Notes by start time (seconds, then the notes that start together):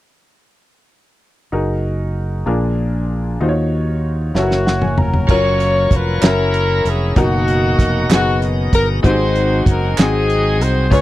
1.52 F#1 D#4 F#4 G#4 A#4
2.46 A#1 A#2 D4 F4 G#4 A#4
3.41 D#2 D#3 D#4 F4 F#4 C5
3.49 C#5
4.34 F#1 A#3 C#4 E4 F#4 A4 C#5, snare
4.42 A#4
4.51 snare
4.67 F#5, snare
4.82 G#5, mid tom
4.98 A#4 A#5, floor tom
5.14 floor tom
5.27 F#1 F#3 C#4 F4 A#4 C#5, kick, crash
5.31 C#5
5.60 closed hi-hat
5.91 F1 B4, kick, closed hi-hat
6.21 F#1 F#3 C#4 E4 F#4 A#4, snare, clap, closed hi-hat
6.26 C#4 E4 A#4
6.54 closed hi-hat
6.85 F1 G#4, closed hi-hat
7.16 F#1 B2 F#3 A#3 D#4 F#4 A#4, kick, closed hi-hat
7.48 closed hi-hat
7.79 F1, kick, closed hi-hat
8.09 F#1 B3 D#4 F#4 G#4, snare, clap, closed hi-hat
8.42 closed hi-hat
8.73 G1 A#4, kick, closed hi-hat
9.03 G#1 G#2 F#3 B3 C4 D#4 F#4 G4 G#4 C5, kick, closed hi-hat
9.09 C4 G#4
9.36 closed hi-hat
9.66 F#1 A#4, kick, closed hi-hat
9.98 G#1 C4 D#4 F#4 G#4, snare, clap, closed hi-hat
10.30 closed hi-hat
10.61 C2 C5, closed hi-hat
10.90 C#2 C#3 F3 B3 C#4 F4 G#4 B4 C#5, kick, closed hi-hat